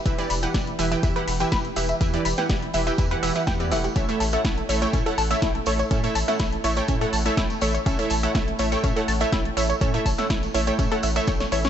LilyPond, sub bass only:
\new Staff \with { instrumentName = "Sub bass" } { \clef bass \time 4/4 \key a \mixolydian \tempo 4 = 123 e,,8 e,,8 e,,8 e,,8 e,8 e,,8 e,,8 e,,8 | e,8 e,,8 e,,8 e,,8 e,8 e,,8 e,8 e,,8 | a,,8 a,,8 a,,8 a,,8 a,8 a,,8 a,,8 a,,8 | a,8 a,,8 a,,8 a,,8 a,8 a,,8 a,,8 a,,8 |
a,,8 a,,8 a,,8 a,,8 a,8 a,,8 a,,8 a,,8 | a,8 a,,8 a,,8 a,,8 a,8 a,,8 a,,8 a,,8 | }